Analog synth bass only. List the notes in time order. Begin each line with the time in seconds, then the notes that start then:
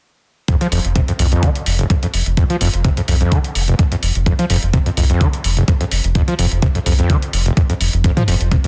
0.72 F1
0.85 F1
1.19 C2
1.66 F1
2.14 F1
2.26 F1
2.61 F1
2.74 F1
3.08 C2
3.55 F1
4.03 F1
4.15 F1
4.50 F1
4.63 F1
4.97 C2
5.44 F1
5.92 F1
6.04 F1
6.39 F1
6.51 F1
6.86 C2
7.33 F1
7.81 F1
7.93 F1
8.28 F1
8.41 F1